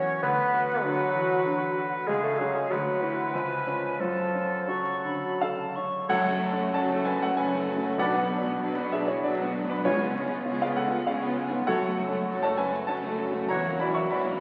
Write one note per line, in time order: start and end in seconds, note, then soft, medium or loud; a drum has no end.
0.00 0.19 E2 medium
0.00 0.25 E3 medium
0.00 0.25 F#3 soft
0.00 0.22 C#4 medium
0.00 0.25 F#4 medium
0.00 0.19 C#5 medium
0.00 0.22 C#5 medium
0.22 2.03 D2 medium
0.22 0.84 B3 medium
0.22 2.09 B4 medium
0.22 0.85 B4 medium
0.22 2.04 F#5 medium
0.54 1.01 F#4 medium
0.83 1.32 D3 medium
0.83 1.80 F#3 medium
0.83 1.80 F#4 medium
1.15 1.45 E3 soft
1.45 1.96 D3 medium
1.78 2.08 F#4 medium
2.07 2.69 C#2 medium
2.07 2.22 G#3 medium
2.07 2.73 G#4 medium
2.07 2.22 G#4 medium
2.07 2.73 F5 medium
2.23 2.40 A3 medium
2.23 2.40 A4 medium
2.38 2.57 F#3 medium
2.38 2.68 C#4 soft
2.38 2.56 F#4 medium
2.38 2.68 G#4 medium
2.54 2.69 G#3 medium
2.54 2.71 G#4 medium
2.70 3.33 D2 medium
2.70 3.03 F#3 medium
2.70 3.04 F#4 medium
2.70 4.02 B4 medium
2.70 3.35 F#5 medium
3.02 3.36 E3 medium
3.02 3.36 E4 medium
3.02 3.32 F#4 medium
3.02 3.32 B4 medium
3.34 3.98 C#2 medium
3.34 3.99 F3 medium
3.34 4.00 F4 medium
3.34 3.99 G#5 medium
3.67 3.97 C#4 soft
3.67 3.97 B4 soft
4.00 6.05 F#2 medium
4.00 4.70 F3 medium
4.00 4.69 F4 medium
4.00 5.76 A4 medium
4.00 4.60 A5 medium
4.35 4.90 C#4 soft
4.67 5.26 C#3 soft
4.67 5.76 F#3 medium
4.67 5.76 F#4 medium
4.67 5.01 C#6 medium
5.05 5.41 D3 soft
5.05 5.42 B5 medium
5.40 5.96 C#3 soft
5.40 6.06 A4 medium
5.40 6.05 F5 medium
5.40 5.77 A5 medium
5.76 6.10 C#4 soft
5.76 6.09 C#6 medium
6.08 6.66 F#1 medium
6.08 7.94 F#2 medium
6.08 6.66 F#2 medium
6.08 6.24 F#3 medium
6.08 6.31 A3 medium
6.08 7.95 A3 medium
6.08 7.94 C#4 medium
6.08 6.24 C#4 medium
6.08 6.32 F#4 medium
6.08 6.70 A4 medium
6.08 6.25 A4 medium
6.08 6.31 C#5 medium
6.08 6.39 F#5 medium
6.08 6.70 F#5 medium
6.08 concert bass drum medium
6.08 crash medium
6.25 6.42 A3 soft
6.25 6.42 F#4 soft
6.31 6.65 A3 medium
6.41 6.58 F#3 soft
6.41 6.58 C#4 medium
6.41 6.58 A4 medium
6.52 6.73 A3 soft
6.52 6.87 C#4 medium
6.58 6.74 A3 medium
6.58 6.74 F#4 soft
6.73 7.29 F#1 medium
6.73 7.30 F#2 medium
6.73 6.88 F#3 medium
6.73 6.89 C#4 medium
6.73 7.07 F#4 medium
6.73 6.89 A4 medium
6.73 7.04 C#5 medium
6.73 7.03 A5 medium
6.89 7.05 A3 medium
6.89 7.06 A3 soft
6.89 7.06 F#4 soft
6.94 7.22 A4 medium
7.05 7.21 F#3 medium
7.05 7.22 C#4 soft
7.05 7.22 A4 medium
7.05 7.21 B4 medium
7.05 7.20 G#5 medium
7.16 7.49 F#4 soft
7.20 7.36 A3 soft
7.20 7.38 A3 soft
7.20 7.38 F#4 soft
7.20 7.37 A4 medium
7.20 7.36 F#5 medium
7.36 7.91 F#1 medium
7.36 7.91 F#2 medium
7.36 7.51 F#3 soft
7.36 7.70 C#4 medium
7.36 7.52 C#4 medium
7.36 7.51 A4 soft
7.36 7.95 B4 medium
7.36 7.95 G#5 medium
7.53 7.68 A3 soft
7.53 7.68 A3 medium
7.53 7.68 F#4 soft
7.57 7.90 A3 medium
7.68 7.83 F#3 soft
7.68 7.83 C#4 soft
7.68 7.83 A4 medium
7.77 7.98 C#3 medium
7.83 7.99 A3 soft
7.83 7.99 F#4 soft
7.98 9.80 B1 medium
7.98 8.53 B1 medium
7.98 8.53 B2 medium
7.98 8.13 F#3 medium
7.98 8.20 B3 medium
7.98 11.64 B3 medium
7.98 9.81 D4 medium
7.98 8.14 D4 medium
7.98 8.19 F#4 medium
7.98 8.13 B4 medium
7.98 8.79 B4 medium
7.98 8.20 D5 medium
7.98 8.27 F#5 medium
7.98 8.88 F#5 medium
8.14 8.30 B3 soft
8.14 8.51 B3 soft
8.14 8.29 F#4 soft
8.29 8.45 F#3 soft
8.29 8.45 D4 soft
8.29 8.44 B4 soft
8.38 8.72 D4 soft
8.45 8.60 B3 soft
8.45 8.61 B3 soft
8.45 8.60 F#4 soft
8.59 9.16 B1 medium
8.59 9.16 B2 medium
8.59 8.74 F#3 soft
8.59 8.76 D4 soft
8.59 8.93 F#4 soft
8.59 8.74 B4 soft
8.76 8.92 B3 soft
8.76 8.93 B3 soft
8.76 8.91 F#4 soft
8.80 9.14 B4 medium
8.91 9.07 F#3 soft
8.91 9.09 D4 soft
8.91 9.07 G#4 medium
8.91 9.07 B4 soft
8.91 9.07 E5 medium
9.02 9.23 F#4 medium
9.02 9.22 F#4 soft
9.07 9.23 B3 soft
9.07 9.24 B3 soft
9.07 9.23 E4 soft
9.07 9.22 C#5 medium
9.22 9.77 B1 medium
9.22 9.77 B2 medium
9.22 9.38 F#3 soft
9.22 9.57 D4 medium
9.22 9.67 F#4 medium
9.22 9.37 B4 soft
9.22 9.66 D5 medium
9.26 9.39 D4 medium
9.38 9.55 B3 soft
9.38 9.56 B3 soft
9.38 9.54 F#4 soft
9.44 9.77 B3 soft
9.54 9.70 F#3 soft
9.54 9.70 D4 soft
9.54 9.69 B4 soft
9.64 9.85 F#2 soft
9.68 9.85 B3 soft
9.68 9.84 D4 soft
9.68 9.84 F#4 soft
9.68 9.84 B4 medium
9.84 10.39 C#2 medium
9.84 11.64 C#2 medium
9.84 10.39 C#3 medium
9.84 10.73 C#3 medium
9.84 9.99 G#3 medium
9.84 10.06 B3 medium
9.84 10.00 C#4 soft
9.84 10.06 F4 medium
9.84 10.44 F4 medium
9.84 11.64 F4 medium
9.84 9.99 G#4 medium
9.84 10.58 C#5 medium
9.84 10.06 C#5 medium
9.84 10.13 G#5 medium
10.01 10.16 B3 soft
10.01 10.16 F4 soft
10.05 10.38 B3 soft
10.15 10.31 G#3 soft
10.15 10.30 C#4 soft
10.15 10.31 G#4 soft
10.26 10.46 B3 soft
10.26 10.59 C#4 soft
10.31 10.46 B3 soft
10.31 10.46 F4 soft
10.45 11.00 C#2 medium
10.45 11.00 C#3 medium
10.45 10.61 G#3 soft
10.45 10.60 C#4 soft
10.45 10.79 F4 soft
10.45 10.61 G#4 soft
10.61 10.77 B3 soft
10.61 10.77 F4 soft
10.61 10.77 G#4 medium
10.61 10.76 F5 medium
10.67 10.99 B4 medium
10.76 10.92 G#3 soft
10.76 10.92 C#4 soft
10.76 10.92 G#4 soft
10.76 11.06 A4 medium
10.76 11.05 F#5 medium
10.88 11.07 B3 soft
10.88 11.20 F4 medium
10.88 11.07 F4 soft
10.92 11.08 B3 soft
11.06 11.61 C#2 medium
11.06 11.61 C#3 medium
11.06 11.21 G#3 soft
11.06 11.22 C#4 soft
11.06 11.40 C#4 medium
11.06 11.21 G#4 soft
11.06 11.64 G#4 soft
11.06 11.63 F5 medium
11.22 11.38 B3 soft
11.22 11.38 F4 soft
11.28 11.60 B3 soft
11.38 11.53 G#3 soft
11.38 11.53 C#4 soft
11.38 11.53 G#4 soft
11.49 11.68 G#2 soft
11.49 11.67 B3 soft
11.49 11.67 F4 soft
11.67 12.21 F#1 medium
11.67 12.53 F#2 medium
11.67 12.21 F#2 medium
11.67 13.45 F#2 medium
11.67 11.81 F#3 medium
11.67 11.88 A3 medium
11.67 13.32 A3 medium
11.67 11.81 C#4 soft
11.67 14.40 F#4 medium
11.67 11.89 F#4 medium
11.67 11.82 A4 medium
11.67 12.39 A4 medium
11.67 11.89 C#5 medium
11.67 11.95 F#5 medium
11.67 12.38 F#5 medium
11.82 11.98 A3 soft
11.82 11.98 F#4 soft
11.88 12.20 A3 soft
11.97 12.13 F#3 soft
11.97 12.12 C#4 soft
11.97 12.12 A4 soft
12.08 12.27 A3 soft
12.08 12.40 C#4 soft
12.08 12.28 F#4 soft
12.27 12.80 F#1 medium
12.27 12.81 F#2 medium
12.27 12.41 F#3 soft
12.27 12.41 C#4 medium
12.27 12.60 F#4 medium
12.27 12.42 A4 medium
12.42 12.57 A3 soft
12.42 12.58 F#4 soft
12.42 12.57 C#5 medium
12.42 12.56 A5 medium
12.48 12.80 A4 medium
12.57 12.72 F#3 soft
12.57 12.73 C#4 medium
12.57 12.73 A4 soft
12.57 12.86 B4 medium
12.57 12.85 G#5 medium
12.69 12.87 A3 soft
12.69 12.88 A3 soft
12.69 13.00 F#4 medium
12.69 12.88 F#4 soft
12.87 13.42 F#1 medium
12.87 13.42 F#2 medium
12.87 13.01 F#3 soft
12.87 13.21 C#4 medium
12.87 13.03 C#4 medium
12.87 13.02 A4 soft
12.87 13.46 C#5 medium
12.87 13.45 A5 medium
13.02 13.18 A3 soft
13.02 13.19 A3 soft
13.02 13.18 F#4 soft
13.09 13.41 A3 soft
13.18 13.34 F#3 soft
13.18 13.34 C#4 soft
13.18 13.34 A4 medium
13.31 13.50 C#3 soft
13.31 13.49 A3 soft
13.31 13.48 F#4 soft
13.35 13.50 A3 soft
13.48 14.03 E1 medium
13.48 14.03 E2 medium
13.48 14.40 E2 medium
13.48 13.63 E3 medium
13.48 13.70 F#3 medium
13.48 14.40 C#4 medium
13.48 13.63 C#4 soft
13.48 13.63 E4 medium
13.48 13.70 F#4 medium
13.48 13.71 C#5 medium
13.48 13.78 C#5 medium
13.48 13.77 F#5 medium
13.48 13.77 A#5 medium
13.63 13.80 F#3 soft
13.63 13.79 A#3 soft
13.63 13.79 F#4 soft
13.71 14.03 F#3 medium
13.79 13.95 E3 soft
13.79 13.95 C#4 medium
13.79 13.94 E4 soft
13.79 13.95 D5 medium
13.79 13.94 B5 medium
13.91 14.10 A#3 soft
13.91 14.23 C#4 soft
13.91 14.09 F#4 soft
13.91 14.09 C#6 medium
13.95 14.10 F#3 soft
13.95 14.09 E5 medium
14.08 14.40 E1 medium
14.08 14.40 E2 medium
14.08 14.25 E3 medium
14.08 14.24 C#4 medium
14.08 14.23 E4 soft
14.08 14.40 F#4 medium
14.08 14.39 D5 medium
14.08 14.39 B5 medium
14.24 14.40 F#3 soft
14.24 14.40 A#3 soft
14.24 14.40 F#4 soft
14.32 14.40 C#4 medium